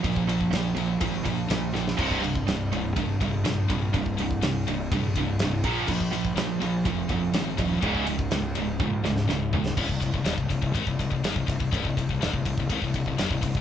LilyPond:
<<
  \new Staff \with { instrumentName = "Distorted electric guitar" } { \clef bass \time 4/4 \key bes \dorian \tempo 4 = 123 <bes, f>8 <bes, f>8 <bes, f>8 <bes, f>8 <bes, f>8 <bes, f>8 <bes, f>8 <bes, f>8 | <c, g, c>8 <c, g,>8 <c, g,>8 <c, g,>8 <c, g,>8 <c, g,>8 <c, g,>8 <c, g,>8 | <c, g,>8 <c, g,>8 <c, g,>8 <c, g,>8 <c, g,>8 <c, g,>8 <c, g,>8 <bes, f bes>8 | <bes, f>8 <bes, f>8 <bes, f>8 <bes, f>8 <bes, f>8 <bes, f>8 <bes, f>8 <bes, f>8 |
<des, aes, des>8 <des, aes,>8 <des, aes,>8 <des, aes,>8 <des, aes,>8 <des, aes,>8 <des, aes,>8 <des, aes,>8 | r1 | r1 | }
  \new Staff \with { instrumentName = "Distorted electric guitar" } { \clef bass \time 4/4 \key bes \dorian <bes, f>8 <bes, f>8 <bes, f>8 <bes, f>8 <bes, f>8 <bes, f>8 <bes, f>8 <bes, f>8 | <c, g, c>8 <c, g,>8 <c, g,>8 <c, g,>8 <c, g,>8 <c, g,>8 <c, g,>8 <c, g,>8 | <c, g,>8 <c, g,>8 <c, g,>8 <c, g,>8 <c, g,>8 <c, g,>8 <c, g,>8 <bes, f bes>8 | <bes, f>8 <bes, f>8 <bes, f>8 <bes, f>8 <bes, f>8 <bes, f>8 <bes, f>8 <bes, f>8 |
<des, aes, des>8 <des, aes,>8 <des, aes,>8 <des, aes,>8 <des, aes,>8 <des, aes,>8 <des, aes,>8 <des, aes,>8 | c,16 c,16 c,16 c,16 ees,16 c,16 c,16 c,16 aes,16 c,16 c,16 c,16 fis,16 c,16 c,16 c,16 | c,16 c,16 c,16 c,16 ees,16 c,16 c,16 c,16 aes,16 c,16 c,16 c,16 fis,16 c,16 c,16 c,16 | }
  \new Staff \with { instrumentName = "Fingered electric bass" } { \clef bass \time 4/4 \key bes \dorian bes,,4 bes,,8 bes,,8 aes,,8 bes,,8 bes,,4 | c,,4 c,,8 c,,8 g,,8 g,,8 bes,,8 bes,,8 | c,,4 c,8 c,,8 bes,,8 c,,8 c,,8 bes,,8 | bes,,4 bes,,8 bes,,8 f,,8 f,,8 aes,,8 ees,,8 |
des,,4 des,8 des,,8 bes,,8 des,,8 des,,4 | c,,16 c,,16 c,,16 c,,16 ees,,16 c,,16 c,,16 c,,16 aes,,16 c,,16 c,,16 c,,16 fis,,16 c,,16 c,,16 c,,16 | c,,16 c,,16 c,,16 c,,16 ees,,16 c,,16 c,,16 c,,16 aes,,16 c,,16 c,,16 c,,16 fis,,16 c,,16 c,,16 c,,16 | }
  \new DrumStaff \with { instrumentName = "Drums" } \drummode { \time 4/4 <bd cymr>16 bd16 cymr16 bd16 <cymr sn>8 cymr8 <bd cymr>8 <bd cymr>8 <cymr sn>8 sn16 sn16 | <cymc bd>16 bd16 cymr16 bd16 <cymr sn>8 cymr8 <bd cymr>8 <bd cymr>8 <cymr sn>8 <bd cymr>8 | <bd cymr>16 bd16 cymr16 bd16 <cymr sn>8 cymr8 <bd cymr>8 <bd cymr>8 <cymr sn>8 <bd cymr>8 | <cymc bd>16 bd16 cymr16 bd16 <cymr sn>8 cymr8 <bd cymr>8 <bd cymr>8 <cymr sn>8 <bd cymr>8 |
<bd cymr>16 bd16 cymr16 bd16 <cymr sn>8 cymr8 <bd tommh>8 sn16 sn16 sn8 tomfh16 sn16 | <cymc bd>16 bd16 <bd cymr>16 bd16 <cymr sn>16 bd16 <bd cymr>16 bd16 <bd cymr>16 bd16 <bd cymr>16 bd16 <cymr sn>16 bd16 <bd cymr>16 bd16 | <bd cymr>16 bd16 <bd cymr>16 bd16 <cymr sn>16 bd16 <bd cymr>16 bd16 <bd cymr>16 bd16 <bd cymr>16 bd16 <cymr sn>16 bd16 <bd cymr>16 bd16 | }
>>